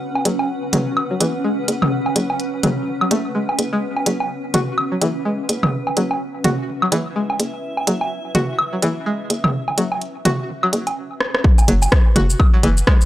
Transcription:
Already playing: ambient pad C#4 B4 F#5
0.15 low woodblock
0.25 fm bass F#1, synth pluck F#3, closed hi-hat
0.39 low woodblock
0.73 fm bass F#1, synth pluck F#3, closed hi-hat, mid tom
0.97 high woodblock
1.11 synth pluck F#3
1.21 fm bass F#1, synth pluck E3, closed hi-hat
1.44 synth pluck G#3
1.68 fm bass F#1, closed hi-hat
1.82 mid tom, high woodblock
2.06 low woodblock
2.16 fm bass F#1, synth pluck F#3, closed hi-hat
2.30 low woodblock
2.40 closed hi-hat
2.63 fm bass F#1, synth pluck F#3, closed hi-hat, mid tom
3.01 synth pluck F#3, high woodblock
3.11 fm bass F#1, synth pluck A3, closed hi-hat
3.35 synth pluck G#3
3.49 low woodblock
3.59 fm bass F#1, closed hi-hat
3.73 synth pluck G#3
3.97 low woodblock
4.06 fm bass F#1, synth pluck F#3, closed hi-hat
4.20 low woodblock
4.54 fm bass F#1, synth pluck F#4, closed hi-hat, mid tom
4.78 high woodblock
4.92 synth pluck F#3
5.01 fm bass F#1, synth pluck E3, closed hi-hat
5.25 synth pluck G#3
5.49 fm bass F#1, closed hi-hat
5.63 mid tom, high woodblock
5.87 ambient pad E5, low woodblock
5.97 fm bass F#1, synth pluck F#3, closed hi-hat
6.11 low woodblock
6.44 fm bass F#1, synth pluck F#4, closed hi-hat, mid tom
6.82 synth pluck F#3, high woodblock
6.92 fm bass F#1, synth pluck E3, closed hi-hat
7.16 synth pluck G#3
7.30 low woodblock
7.40 fm bass F#1, closed hi-hat
7.77 low woodblock
7.87 fm bass F#1, synth pluck F#3, closed hi-hat
8.01 low woodblock
8.35 fm bass F#1, synth pluck F#4, closed hi-hat, mid tom
8.59 high woodblock
8.73 synth pluck F#3
8.82 fm bass F#1, synth pluck E3, closed hi-hat
9.06 synth pluck G#3
9.30 fm bass F#1, closed hi-hat
9.44 mid tom, high woodblock
9.68 low woodblock
9.78 fm bass F#1, synth pluck F#3, closed hi-hat
9.92 low woodblock
10.02 closed hi-hat
10.25 fm bass F#1, synth pluck F#4, closed hi-hat, mid tom
10.63 synth pluck F#3, high woodblock
10.73 fm bass F#1, closed hi-hat
10.87 closed hi-hat, low woodblock
11.21 cross-stick
11.35 cross-stick
11.44 kick
11.58 low woodblock, shaker
11.68 fm bass F#1, synth pluck F#3, closed hi-hat
11.77 ambient pad F#5
11.82 low woodblock, shaker
11.92 kick, cross-stick, closed hi-hat
12.16 fm bass F#1, synth pluck F#4, closed hi-hat, mid tom
12.30 shaker
12.40 kick, high woodblock
12.54 synth pluck F#3
12.63 fm bass F#1, synth pluck E3, closed hi-hat
12.77 shaker
12.87 synth pluck G#3, kick, cross-stick
13.01 shaker

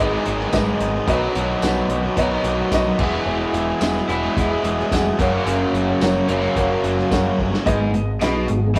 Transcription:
Already playing: picked electric bass G#1, overdriven electric guitar G#2 D#3 G#3 B3 D#4 G#4, tonewheel organ D#4 G#4 B4 D#5, upright piano G#4
0.00 overdriven electric guitar G#2 D#3 G#3 B3 D#4, upright piano B4 D#5
0.12 overdriven electric guitar G#3 B3 D#4 G#4
0.26 picked electric bass G#1, overdriven electric guitar G#2 D#3 G#3 B3 D#4 G#4, closed hi-hat
0.40 overdriven electric guitar G#3 B3 D#4 G#4, snare
0.52 picked electric bass G#1, overdriven electric guitar G#2 D#3 G#3 B3 D#4 G#4, upright piano G#4 B4 D#5, kick, snare, closed hi-hat, tambourine
0.68 overdriven electric guitar G#3 B3 D#4 G#4
0.80 picked electric bass G#1, overdriven electric guitar G#2 D#3 G#3 B3 D#4 G#4, closed hi-hat
0.94 overdriven electric guitar G#3 B3 D#4 G#4
1.06 picked electric bass B1, overdriven electric guitar B2 D#3 F#3 B3 D#4 F#4, tonewheel organ D#4 F#4 B4 C#5, upright piano B4 C#5 D#5, kick, closed hi-hat
1.35 picked electric bass B1, overdriven electric guitar B2 F#3 B3 D#4 F#4, closed hi-hat
1.62 picked electric bass B1, overdriven electric guitar B2 F#3 B3 D#4 F#4, upright piano B4 C#5 F#5, snare, closed hi-hat, tambourine
1.89 picked electric bass B1, overdriven electric guitar B2 F#3 B3, muted overdriven electric guitar stroke, closed hi-hat
2.03 overdriven electric guitar B3 D#4 F#4
2.16 picked electric bass B1, overdriven electric guitar B2 D#3 F#3 B3 D#4, upright piano B4 C#5 D#5, kick, closed hi-hat
2.31 overdriven electric guitar B3 D#4 F#4
2.43 picked electric bass B1, overdriven electric guitar B2 F#3 B3 D#4, closed hi-hat
2.47 overdriven electric guitar F#4
2.58 overdriven electric guitar B3 D#4 F#4
2.71 picked electric bass B1, overdriven electric guitar B2 F#3 B3 D#4 F#4, upright piano B4 C#5 D#5, kick, snare, closed hi-hat, tambourine
2.86 overdriven electric guitar B3 D#4 F#4
2.99 picked electric bass E1, overdriven electric guitar E2 B2 E3 G#3 B3 E4 G#4, tonewheel organ E4 F#4 G#4 B4, upright piano G#4 E5 F#5, kick, crash
3.13 overdriven electric guitar E3 G#3 B3 G#4
3.26 picked electric bass E1, overdriven electric guitar E2 B2 E3 G#3 B3
3.30 overdriven electric guitar G#4
3.53 picked electric bass E1, overdriven electric guitar E2 B2 E3 G#3 B3 G#4, closed hi-hat
3.80 picked electric bass E1, overdriven electric guitar E2 B2 E3 G#3 B3 G#4, upright piano G#4 E5 G#5, snare, closed hi-hat, tambourine
3.96 snare
4.08 picked electric bass E1, overdriven electric guitar E2 B2 E3 G#3 B3 E4, muted overdriven electric guitar stroke, closed hi-hat
4.23 overdriven electric guitar E3 G#3 B3 G#4
4.36 picked electric bass E1, overdriven electric guitar E2 B2 E3, upright piano G#4 E5 F#5, kick, closed hi-hat
4.51 overdriven electric guitar E3 G#3 B3 G#4
4.63 picked electric bass E1, overdriven electric guitar E2 B2 E3 G#3 B3 G#4, closed hi-hat
4.78 overdriven electric guitar E3 G#3 B3 G#4, snare
4.91 picked electric bass F1, overdriven electric guitar E2 B2 E3 G#3 B3 G#4, upright piano G#4 E5 F#5, kick, snare, closed hi-hat, tambourine
5.05 overdriven electric guitar E3 G#3 B3 G#4
5.19 picked electric bass F#1, overdriven electric guitar F#2 C#3 F#3 A#3 C#4 F#4, tonewheel organ C#4 F#4 A#4 C#5, upright piano A#4 C#5 F#5, kick, closed hi-hat
5.32 overdriven electric guitar F#3 A#3 C#4 F#4
5.46 picked electric bass F#1, overdriven electric guitar F#2 C#3 F#3 A#3 C#4 F#4, closed hi-hat
5.73 picked electric bass F#1, overdriven electric guitar F#2 C#3 F#3 A#3 C#4 F#4, closed hi-hat
6.00 picked electric bass F#1, overdriven electric guitar F#2 C#3 F#3 A#3 C#4 F#4, upright piano A#4 C#5 F#5, snare, closed hi-hat, tambourine
6.28 picked electric bass F#1, overdriven electric guitar F#2 C#3 F#3 A#3 C#4, muted overdriven electric guitar stroke, closed hi-hat
6.41 overdriven electric guitar F#3 A#3 C#4 F#4
6.56 picked electric bass F#1, overdriven electric guitar F#2 C#3 F#3, upright piano A#4 C#5 F#5, kick, closed hi-hat
6.68 overdriven electric guitar F#3 A#3 C#4 F#4
6.83 picked electric bass F#1, overdriven electric guitar F#2 C#3 F#3 A#3 C#4 F#4, closed hi-hat
6.97 overdriven electric guitar F#3 A#3 C#4 F#4, snare
7.10 picked electric bass F#1, overdriven electric guitar F#2 C#3 F#3 A#3 C#4 F#4, upright piano A#4 C#5 F#5, kick, snare, closed hi-hat, tambourine
7.23 overdriven electric guitar F#3 A#3 C#4 F#4
7.38 picked electric bass G1, overdriven electric guitar F#2 C#3 F#3 A#3 C#4 F#4, kick
7.52 overdriven electric guitar F#3 A#3 C#4 F#4, snare
7.65 picked electric bass G#1, overdriven electric guitar G#2, tonewheel organ D#3 G#3 B3, upright piano G#4 B4 D#5, kick, closed hi-hat
7.92 picked electric bass G#1, overdriven electric guitar G#2, closed hi-hat
8.20 picked electric bass B1, overdriven electric guitar B2, tonewheel organ C#4, upright piano G#4 B4 D#5, snare, closed hi-hat, tambourine
8.36 tonewheel organ D#4
8.48 picked electric bass G#1, overdriven electric guitar G#2, tonewheel organ D#3 G#3 B3 F#4, closed hi-hat
8.61 tonewheel organ G4
8.66 tonewheel organ G#4
8.74 picked electric bass C#2, overdriven electric guitar C#3, upright piano G#4 B4, kick, closed hi-hat

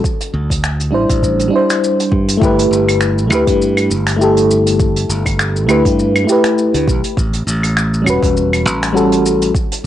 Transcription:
0.04 kick, shaker
0.20 closed hi-hat, shaker
0.34 fingered electric bass D2
0.50 kick, closed hi-hat, shaker
0.64 finger snap, shaker
0.80 closed hi-hat, shaker
0.91 fingered electric bass A1, fm electric piano G3 D4 E4 C5
1.09 fingered electric bass A1, kick, closed hi-hat, shaker
1.23 kick, shaker
1.39 closed hi-hat, shaker
1.48 fm electric piano G3 D4
1.53 fm electric piano E4 C5
1.70 finger snap, closed hi-hat, shaker
1.84 shaker
2.00 closed hi-hat, shaker
2.12 fingered electric bass G2, kick
2.28 closed hi-hat, shaker
2.37 fm electric piano A3 E4
2.41 fingered electric bass G1, fm electric piano G4 B4, kick, shaker
2.59 closed hi-hat, shaker
2.71 fingered electric bass G1, shaker
2.88 closed hi-hat, claves, shaker
3.01 finger snap, shaker
3.18 shaker
3.27 fingered electric bass D2, fm electric piano A3 E4, claves
3.32 fm electric piano G4 B4, shaker
3.47 fingered electric bass G2, kick, closed hi-hat, shaker
3.62 shaker
3.77 closed hi-hat, claves, shaker
3.90 fingered electric bass G1, shaker
4.06 finger snap, closed hi-hat, shaker
4.16 fm electric piano A3 E4
4.21 fm electric piano G4 A4, shaker
4.37 closed hi-hat, shaker
4.51 shaker
4.66 closed hi-hat, shaker
4.80 kick, shaker
4.96 closed hi-hat, shaker
5.09 fingered electric bass G1, shaker
5.26 kick, closed hi-hat, claves, shaker
5.39 finger snap, shaker
5.56 shaker
5.67 fingered electric bass D2, fm electric piano A3 E4 G4, claves, shaker
5.71 fm electric piano B4
5.85 fingered electric bass G2, kick, closed hi-hat, shaker
5.99 shaker
6.15 closed hi-hat, claves, shaker
6.24 fm electric piano A3 E4
6.29 fm electric piano G4 B4, shaker
6.44 finger snap, closed hi-hat, shaker
6.58 shaker
6.74 fingered electric bass D2, closed hi-hat, shaker
6.88 fingered electric bass B1, kick, shaker
7.04 closed hi-hat, shaker
7.17 fingered electric bass A1, kick, shaker
7.33 closed hi-hat, shaker
7.47 fingered electric bass A1, shaker
7.63 closed hi-hat, claves, shaker
7.77 finger snap, shaker
7.94 shaker
8.02 fm electric piano G3 C#4
8.06 fingered electric bass E1, fm electric piano F#4 B4, claves, shaker
8.22 fingered electric bass E1, kick, closed hi-hat, shaker
8.37 shaker
8.53 closed hi-hat, claves, shaker
8.66 fingered electric bass A1, shaker
8.82 finger snap, closed hi-hat, shaker
8.93 fm electric piano G3 C#4 F#4 A4
8.97 shaker
9.12 closed hi-hat, shaker
9.26 shaker
9.42 closed hi-hat, shaker
9.55 kick, shaker
9.72 closed hi-hat, shaker

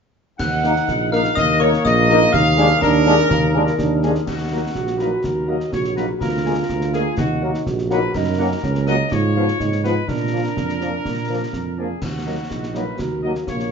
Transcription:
0.39 tuba D#2, euphonium D#4, woodwind section F#5, trumpet section F#5, glockenspiel F#6, concert bass drum, snare, crash
0.64 trombone section A#3 D#4, french horn section A#3 D#4 A#4, snare
0.76 snare
0.88 tuba A#1, concert bass drum, snare
1.12 french horn section A#3 D#4 A#4, trombone section A#3 D#4, trumpet section F5, woodwind section F5, glockenspiel F6, snare
1.25 snare
1.35 tuba D#2, euphonium A#3, woodwind section D#5, trumpet section D#5, glockenspiel D#6, concert bass drum, snare
1.60 french horn section A#3 D#4 A#4, trombone section A#3 D#4, woodwind section C#5, trumpet section C#5, glockenspiel C#6
1.73 snare
1.85 tuba A#1, trumpet section D#5, woodwind section D#5, glockenspiel D#6, concert bass drum, snare
2.09 french horn section A#3 D#4 A#4, trombone section A#3 D#4, snare
2.22 snare
2.32 tuba D#2, woodwind section F5, trumpet section F5, glockenspiel F6, concert bass drum, snare
2.57 trombone section G#3 D4, french horn section A#3 D4 G#4, snare
2.70 snare
2.81 tuba D#2, euphonium D4, trumpet section A#4, woodwind section A#4, glockenspiel A#5, concert bass drum, snare
3.05 trombone section G#3 D4, french horn section A#3 D4 G#4, snare
3.19 snare
3.30 tuba D#2, euphonium A#3, concert bass drum, snare
3.54 trombone section G#3 D4, french horn section A#3 D4 G#4
3.67 snare
3.78 tuba D#2, euphonium D4, concert bass drum, snare
4.02 trombone section G#3 D4, french horn section A#3 D4 G#4, trumpet section G#4, snare
4.15 snare
4.26 tuba D#2, euphonium D#4, trumpet section F#4, concert bass drum, snare, crash
4.51 trombone section F#3 A#3, french horn section A#3 D#4 F#4, woodwind section A#4 A#5
4.74 tuba A#1, euphonium F#4, concert bass drum, snare
4.87 snare
4.99 trombone section F#3 A#3, french horn section A#3 D#4 F#4, woodwind section A#4 A#5, trumpet section B4, snare
5.24 tuba D#2, trumpet section A#4, concert bass drum, snare
5.47 trombone section F#3 A#3, french horn section A#3 D#4 F#4, woodwind section A#4 A#5, trumpet section D#5
5.60 snare
5.72 tuba A#1, euphonium F#4, trumpet section C#5, concert bass drum, snare
5.84 snare
5.96 trombone section F#3 A#3, french horn section A#3 D#4 F#4, woodwind section A#4 A#5, trumpet section B4, snare
6.20 tuba D2, euphonium F4, trumpet section A#4, concert bass drum, snare
6.44 trombone section G#3 A#3, french horn section A#3 F4 G#4, woodwind section A#4 G#5
6.69 tuba D2, concert bass drum, snare
6.81 snare
6.93 trombone section G#3 A#3, french horn section A#3 F4 G#4, trumpet section G#4, woodwind section A#4 G#5, snare
7.18 tuba D#2, euphonium D#4, trumpet section F#4, concert bass drum, snare
7.42 trombone section F#3 A#3, french horn section A#3 D#4 F#4, woodwind section A#4 F#5
7.55 snare
7.66 tuba A#1, euphonium F#4, concert bass drum, snare
7.78 snare
7.89 trombone section F#3 A#3, french horn section A#3 D#4 F#4, woodwind section A#4 F#5, trumpet section B4, snare
8.14 tuba F#2, euphonium D#4, trumpet section A#4, concert bass drum, snare, crash
8.37 trombone section F#3 A#3, french horn section A#3 C#4 F#4, woodwind section A#4 F#5
8.63 tuba C#2, euphonium C#4, concert bass drum, snare
8.75 snare
8.87 trombone section F#3 A#3, french horn section A#3 C#4 F#4, woodwind section A#4 F#5, trumpet section D#5, snare
9.11 tuba G#2, euphonium F4, trumpet section C#5, concert bass drum, snare
9.35 trombone section F3 B3, french horn section F3 B3 F4, woodwind section B4 F5
9.48 snare
9.60 tuba G#2, euphonium D#4, concert bass drum, snare
9.72 snare
9.83 trombone section F3 B3, french horn section F3 B3 F4, trumpet section B4, woodwind section B4 F5, snare
10.08 tuba A#2, euphonium D4, trumpet section A#4, concert bass drum, snare
10.31 trombone section F3 A#3, french horn section F3 A#3 D4, woodwind section A#4 D5
10.57 tuba F2, concert bass drum, snare
10.69 snare
10.80 trombone section F3 A#3, french horn section F3 A#3 D4, woodwind section A#4 D5, snare
11.05 tuba A#2, concert bass drum, snare
11.29 trombone section F3 A#3, french horn section F3 A#3 D4, woodwind section A#4 D5
11.53 tuba F2, concert bass drum, snare
11.78 trombone section F3 A#3, french horn section F3 A#3 D4, trumpet section G#4, woodwind section A#4 D5
12.02 tuba D#2, trumpet section F#4, concert bass drum, snare, crash
12.26 trombone section F#3 A#3, french horn section F#3 A#3 D#4, woodwind section A#4 D#5
12.50 tuba A#1, euphonium D#4, concert bass drum, snare
12.63 snare
12.74 french horn section F#3 A#3 D#4, trombone section F#3 A#3, woodwind section A#4 D#5, trumpet section B4, snare
12.98 tuba D#2, euphonium F#4, trumpet section A#4, concert bass drum, snare
13.22 french horn section F#3 A#3 D#4, trombone section F#3 A#3, woodwind section A#4 D#5, trumpet section D#5
13.35 snare
13.47 tuba A#1, euphonium A#3, trumpet section C#5, concert bass drum, snare
13.60 snare

